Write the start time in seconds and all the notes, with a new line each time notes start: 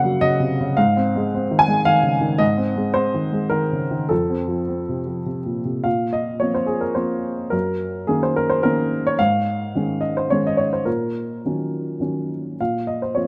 Already playing: F#2 C#3 F#3 A#3 F5 F#5
0.04 F#3
0.21 C#3 D#5
0.40 C3
0.60 C#3
0.77 G#2 F5
0.97 C4
1.16 G#3
1.35 C4
1.51 D#3
1.59 G#5
1.68 G#3
1.85 D#3 F5
2.03 C#3
2.21 D#3
2.38 G#2 D#5
2.57 C4
2.76 G#3
2.94 C4 C5
3.14 D#3
3.33 G#3
3.50 D#3 A#4
3.73 C#3
3.91 D#3
4.09 F2 A4
4.30 C4
4.48 F3
4.68 C4
4.89 C3
5.07 F3
5.26 C3
5.46 A#2
5.65 C3
5.84 A#2 F5
6.13 D#5
6.40 F3 A#3 C4 C#5
6.54 C5
6.66 G#4
6.81 A#4
6.95 F3 A#3 C4 C5
7.50 F#2 A#4
8.07 D#3 A#3 C#4 G#4
8.23 C5
8.36 A#4
8.50 C5
8.63 D#3 A#3 C#4 A#4
9.07 C#5
9.19 G#2 F5
9.75 D#3 G#3 C#4
10.01 D#5
10.17 C5
10.30 D#3 G#3 C#4 C#5
10.47 D#5
10.57 C#5
10.73 C5
10.85 A#2 A#4
11.45 D#3 F#3 C#4
12.00 D#3 F#3 C#4
12.61 A#2 F5
12.87 D#5
13.02 C5
13.15 F3 A#3 C4 C#5